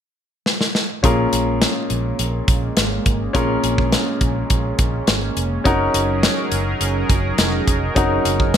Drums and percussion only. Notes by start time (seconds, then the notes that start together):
0.46 snare
0.61 snare
0.75 snare
1.04 kick, closed hi-hat
1.33 closed hi-hat
1.62 snare, closed hi-hat
1.90 closed hi-hat
2.19 closed hi-hat
2.48 kick, closed hi-hat
2.77 snare, closed hi-hat
3.06 kick, closed hi-hat
3.35 kick, closed hi-hat
3.64 closed hi-hat
3.78 kick
3.92 snare, closed hi-hat
4.21 kick, closed hi-hat
4.50 kick, closed hi-hat
4.79 kick, closed hi-hat
5.07 snare, closed hi-hat
5.37 closed hi-hat
5.65 kick, closed hi-hat
5.94 closed hi-hat
6.23 snare, closed hi-hat
6.52 closed hi-hat
6.81 closed hi-hat
7.10 kick, closed hi-hat
7.38 snare, closed hi-hat
7.68 kick, closed hi-hat
7.96 kick, closed hi-hat
8.25 closed hi-hat
8.40 kick